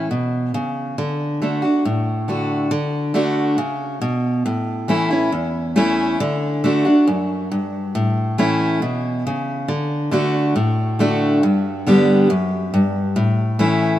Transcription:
0.11 0.52 B2 medium
0.54 0.95 C#3 medium
0.98 1.40 D3 medium
1.42 1.62 D3 medium
1.42 1.62 A3 medium
1.42 1.63 D4 medium
1.42 1.61 F#4 medium
1.62 1.84 D4 soft
1.62 1.83 F#4 medium
1.85 2.68 A2 medium
2.28 2.69 D3 medium
2.28 2.70 A3 medium
2.28 2.70 D4 medium
2.28 2.70 F#4 medium
2.71 3.13 D3 medium
3.14 3.56 D3 medium
3.14 3.56 A3 medium
3.14 3.57 D4 medium
3.14 3.57 F#4 medium
3.58 4.00 C#3 medium
4.02 4.43 B2 medium
4.46 5.29 A2 medium
4.88 5.10 E3 medium
4.88 5.10 A3 medium
4.88 5.10 C#4 medium
4.88 5.09 E4 medium
5.11 5.33 C#4 medium
5.11 5.32 E4 medium
5.32 6.16 E2 medium
5.76 6.18 E3 medium
5.76 6.18 A3 medium
5.76 6.18 C#4 medium
5.76 6.18 E4 medium
6.20 6.63 D3 medium
6.64 6.85 D3 medium
6.64 6.85 A3 medium
6.64 6.85 D4 medium
6.64 6.84 F#4 medium
6.85 7.07 D4 medium
6.85 7.06 F#4 medium
7.07 7.49 F#2 medium
7.52 7.93 G2 medium
7.95 8.77 A2 medium
8.38 8.79 E3 medium
8.38 8.80 A3 medium
8.38 8.80 C#4 medium
8.38 8.80 E4 medium
8.82 9.23 B2 medium
9.27 9.67 C#3 medium
9.68 10.10 D3 medium
10.11 10.53 D3 medium
10.11 10.54 A3 medium
10.11 10.54 D4 medium
10.11 10.54 F#4 medium
10.56 11.38 A2 medium
10.99 11.41 D3 medium
10.99 11.41 A3 medium
10.99 11.41 D4 medium
10.99 11.41 F#4 medium
11.43 12.26 G2 medium
11.87 12.28 D3 medium
11.87 12.28 G3 medium
11.87 12.28 B3 medium
11.87 12.28 G4 medium
12.30 12.71 F#2 medium
12.74 13.15 G2 medium
13.16 13.99 A2 medium
13.59 13.99 E3 medium
13.59 13.99 A3 medium
13.59 13.99 C#4 medium
13.59 13.99 E4 medium

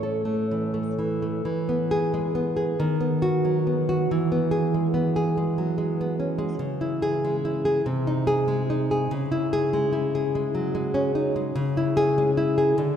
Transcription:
0.00 1.41 A2 medium
0.00 0.25 E3 soft
0.00 0.24 A3 soft
0.00 0.73 C#4 soft
0.00 1.47 A4 soft
0.00 0.16 C#5 medium
0.25 0.73 A3 soft
0.51 0.97 E3 soft
0.74 1.21 A3 soft
0.99 1.44 E3 soft
1.22 1.46 A3 soft
1.45 2.75 E3 medium
1.69 2.34 B3 medium
1.91 2.26 G#4 medium
2.14 2.80 G#3 medium
2.35 2.79 B3 medium
2.57 2.79 G#4 medium
2.80 4.06 D#3 medium
3.01 3.66 B3 medium
3.22 3.58 F#4 medium
3.45 4.10 F#3 medium
3.67 4.10 B3 soft
3.89 4.10 F#4 medium
4.11 6.58 E3 medium
4.32 4.93 B3 medium
4.51 4.86 G#4 medium
4.74 5.36 G#3 medium
4.94 5.99 B3 medium
5.16 6.40 G#4 medium
5.37 5.77 G#3 medium
5.58 6.61 F#3 medium
5.78 6.37 G#3 medium
6.01 6.19 B3 medium
6.20 6.61 C#4 soft
6.38 6.60 G#3 medium
6.59 7.80 C#3 medium
6.81 7.44 E4 medium
7.02 7.35 G#4 medium
7.25 7.85 G#3 medium
7.45 7.85 E4 medium
7.65 7.85 G#4 medium
7.86 9.08 C3 medium
8.07 8.69 D#4 medium
8.27 8.61 G#4 medium
8.48 9.11 G#3 medium
8.70 9.12 D#4 medium
8.91 9.12 G#4 medium
9.11 11.52 C#3 medium
9.32 9.91 E4 medium
9.53 9.85 G#4 loud
9.73 10.34 G#3 medium
9.93 10.94 E4 medium
10.15 11.37 G#4 medium
10.35 10.74 G#3 medium
10.55 11.57 F#3 medium
10.75 11.35 G#3 medium
10.94 11.15 C#4 medium
11.15 11.56 D#4 medium
11.36 11.56 G#3 medium
11.55 12.76 C#3 medium
11.77 12.36 E4 medium
11.97 12.30 G#4 loud
12.18 12.80 G#3 medium
12.37 12.79 E4 medium
12.58 12.79 G#4 medium
12.78 12.96 D3 medium

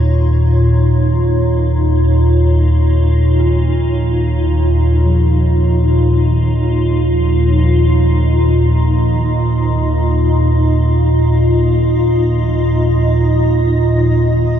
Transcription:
0.00 14.60 D#2 medium
0.00 14.60 A#2 medium
0.00 14.60 D#4 medium
0.00 14.60 F4 medium
0.00 7.64 C#5 medium
3.40 9.71 F4 medium
5.06 11.37 F3 medium
7.30 14.60 D#5 medium

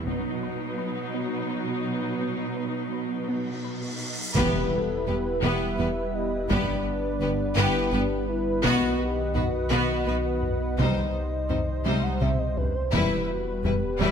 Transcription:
0.07 4.12 B2 medium
0.07 4.12 F#3 medium
0.07 4.37 F#3 medium
0.07 0.29 B3 medium
0.07 4.32 B3 medium
0.07 4.12 D#4 medium
0.07 4.36 D#4 medium
0.07 4.32 B4 medium
0.07 taiko medium
0.43 0.65 B4 soft
0.78 1.00 B4 medium
1.14 1.36 B3 medium
1.51 1.72 B4 soft
2.21 2.43 B3 medium
2.21 cymbal swell soft
2.57 2.78 B4 soft
2.93 3.14 B4 soft
3.28 3.50 B3 medium
3.64 3.86 B4 soft
4.34 4.69 E1 medium
4.34 6.51 E1 medium
4.34 4.69 E2 medium
4.34 4.57 E3 medium
4.34 8.61 G3 medium
4.34 4.69 B3 medium
4.34 10.75 B3 medium
4.34 6.47 E4 medium
4.34 4.69 G4 medium
4.34 4.68 B4 medium
4.34 5.44 B4 loud
4.34 10.75 B4 medium
4.34 taiko medium
4.34 impact medium
4.72 5.08 A4 medium
5.07 5.16 E1 soft
5.07 5.16 E2 soft
5.07 5.29 G3 medium
5.07 5.15 B3 soft
5.07 6.50 G4 medium
5.07 5.16 G4 soft
5.07 5.15 B4 soft
5.42 5.51 E1 medium
5.42 5.51 E2 medium
5.42 5.64 E3 medium
5.42 5.76 B3 medium
5.42 5.77 G4 medium
5.42 5.76 B4 medium
5.42 6.16 E5 loud
5.78 5.87 E1 soft
5.78 5.87 E2 soft
5.78 5.87 B3 medium
5.78 6.00 E4 medium
5.78 5.88 G4 soft
5.78 5.86 B4 medium
6.15 6.50 D#5 medium
6.49 8.66 G1 medium
6.49 6.58 G1 medium
6.49 6.57 G2 medium
6.49 6.72 G3 medium
6.49 6.83 B3 medium
6.49 7.55 D4 medium
6.49 8.65 D4 medium
6.49 6.84 G4 medium
6.49 6.83 B4 medium
6.49 7.56 D5 loud
6.49 taiko medium
7.21 7.29 G1 medium
7.21 7.29 G2 medium
7.21 7.43 B3 medium
7.21 7.30 B3 medium
7.21 7.30 G4 medium
7.21 7.29 B4 medium
7.56 7.65 G1 medium
7.56 7.65 G2 medium
7.56 7.79 G3 medium
7.56 7.91 B3 medium
7.56 7.94 E4 medium
7.56 7.90 G4 medium
7.56 7.90 B4 medium
7.56 8.63 B4 loud
7.92 8.01 G1 medium
7.92 8.01 G2 medium
7.92 8.02 B3 medium
7.92 8.29 D4 medium
7.92 8.14 G4 medium
7.92 8.01 G4 medium
7.92 8.00 B4 medium
8.29 8.64 E4 medium
8.62 10.80 B1 medium
8.62 8.72 B1 medium
8.62 8.72 B2 medium
8.62 10.79 D#3 medium
8.62 8.85 B3 medium
8.62 8.98 B3 medium
8.62 9.00 F#4 medium
8.62 8.98 F#4 medium
8.62 8.97 B4 medium
8.62 10.75 D#5 loud
8.62 10.79 F#5 medium
8.62 taiko loud
8.99 9.36 G4 medium
9.35 9.43 B1 medium
9.35 9.43 B2 medium
9.35 9.43 B3 medium
9.35 9.57 D#4 medium
9.35 9.44 F#4 medium
9.35 10.79 F#4 medium
9.35 9.43 B4 medium
9.35 taiko low-mid medium
9.70 9.79 B1 medium
9.70 9.80 B2 medium
9.70 10.04 B3 medium
9.70 9.93 B3 medium
9.70 10.05 F#4 medium
9.70 10.04 B4 medium
10.07 10.15 B1 medium
10.07 10.16 B2 medium
10.07 10.15 B3 medium
10.07 10.15 F#4 medium
10.07 10.15 B4 medium
10.07 10.29 B4 medium
10.42 taiko low-mid soft
10.78 12.94 C2 medium
10.78 10.86 C2 medium
10.78 10.86 C3 medium
10.78 11.00 C3 medium
10.78 14.11 G3 medium
10.78 11.12 G3 medium
10.78 11.12 D#4 medium
10.78 12.37 D#4 medium
10.78 12.93 C5 medium
10.78 11.12 C5 medium
10.78 11.87 D#5 loud
10.78 taiko medium
11.49 11.58 C2 soft
11.49 11.58 C3 soft
11.49 11.72 D#3 medium
11.49 11.57 G3 soft
11.49 11.58 D#4 soft
11.49 11.58 C5 soft
11.49 taiko low-mid medium
11.85 11.94 C2 medium
11.85 11.94 C3 medium
11.85 12.08 C3 medium
11.85 12.19 G3 medium
11.85 12.19 D#4 medium
11.85 12.19 C5 medium
11.85 12.04 E5 loud
11.85 taiko high medium
12.03 12.20 F#5 medium
12.20 12.30 C2 soft
12.20 12.29 C3 soft
12.20 12.29 G3 soft
12.20 12.43 C4 medium
12.20 12.29 D#4 soft
12.20 12.28 C5 soft
12.20 12.40 E5 medium
12.20 taiko mid medium
12.39 12.58 D#5 medium
12.57 12.77 B4 medium
12.57 taiko low medium
12.75 12.94 C5 medium
12.92 14.11 E1 medium
12.92 13.01 E1 medium
12.92 13.00 E2 medium
12.92 13.15 E3 medium
12.92 13.26 G3 medium
12.92 14.11 B3 medium
12.92 13.26 E4 medium
12.92 13.27 E4 medium
12.92 13.99 B4 loud
12.92 13.26 B4 medium
12.92 14.11 B4 medium
12.92 taiko loud
13.30 13.65 F#4 medium
13.64 13.73 E1 soft
13.64 13.72 E2 medium
13.64 13.72 G3 soft
13.64 13.86 G3 medium
13.64 13.73 E4 medium
13.64 14.11 G4 medium
13.64 13.72 B4 medium
13.64 taiko low-mid medium
13.99 14.08 E1 medium
13.99 14.08 E2 medium
13.99 14.11 E3 medium
13.99 14.11 G3 medium
13.99 14.11 E4 medium
13.99 14.11 B4 medium
13.99 14.11 E5 loud

